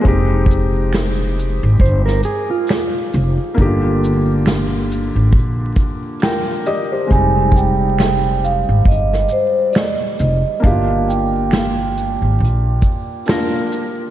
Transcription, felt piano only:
0.01 G#3 C4
0.06 D#4 G4
3.54 D3 A#3
3.59 D#4 G4
3.65 F4
6.23 F4 A#4 G5
6.66 G4 D5 D#5
6.92 G4 C5
7.07 G#3 C4
7.11 G3 D#4
10.60 A#3 D4
10.64 E4 G4
10.71 F4
13.26 A#3 D4 F4 A#4

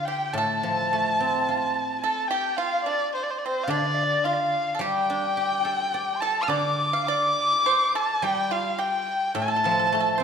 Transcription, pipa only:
0.08 G4
0.38 A4
2.04 A4
2.31 G4
2.58 F4
2.86 D4
3.46 C4
3.71 D4
4.25 F4
4.75 A4
4.81 G4
6.22 A4
6.43 F5
6.49 D5
6.93 F5
7.08 D5
7.66 C5
7.95 A4
8.24 G4
8.51 F4
8.79 G4
9.35 A4
9.42 A4
9.48 A4
9.56 A4
9.64 A4
9.71 A4
9.79 A4
9.87 A4
9.95 A4
10.00 A4
10.18 C5

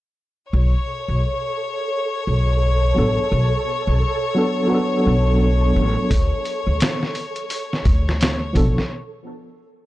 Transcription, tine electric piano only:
2.95 F#3 B3 D4 A4
4.34 F#3 B3 D4 A4
4.67 F#3 B3
4.72 D4 A4
8.53 F3 B3 D4 A4

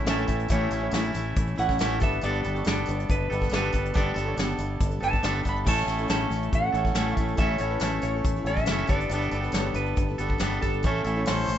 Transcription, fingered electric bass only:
0.05 A1
0.29 A1
0.50 A1
0.71 A1
0.93 A1
1.15 A1
1.36 A1
1.59 A1
1.81 A1
2.01 G1
2.23 G1
2.45 G1
2.66 G1
2.89 G1
3.09 G1
3.31 G1
3.52 G1
3.73 G1
3.96 G1
4.16 G1
4.37 G1
4.58 G1
4.80 G1
5.02 G1
5.23 G1
5.45 G1
5.67 A1
5.87 A1
6.09 A1
6.30 A1
6.53 A1
6.74 A1
6.95 A1
7.17 A1
7.38 A1
7.60 A1
7.81 A1
8.03 A1
8.25 A1
8.44 A1
8.66 F#1
8.88 G1
9.10 G1
9.31 G1
9.53 G1
9.74 G1
9.97 G1
10.19 G1
10.40 G1
10.63 G1
10.85 A1
11.05 A1
11.29 A1
11.48 A1

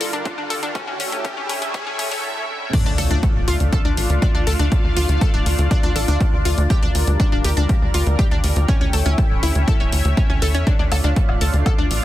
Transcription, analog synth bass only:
2.86 D2
2.98 D2
3.11 D2
3.35 D1
3.48 D2
3.60 D2
3.85 D2
3.97 A1
4.10 D2
4.35 D2
4.47 D2
4.59 D2
4.84 D2
4.96 D2
5.09 D2
5.34 D1
5.46 D2
5.58 D2
5.83 D2
5.96 A1
6.08 D2
6.33 D2
6.45 D2
6.58 D2
6.83 D2
6.95 D2
7.07 D2
7.32 D1
7.44 D2
7.57 D2
7.82 D2
7.94 D2
8.07 D2
8.31 D2
8.44 D2
8.56 D2
8.81 D2
8.93 D2
9.06 D2
9.30 D1
9.43 D2
9.55 D2
9.80 D1
9.92 D2
10.05 D2
10.30 D2
10.42 D2
10.54 E2
10.79 D2
10.91 D2
11.04 D2
11.29 D1
11.41 D2
11.54 D2
11.78 D2
11.91 A1

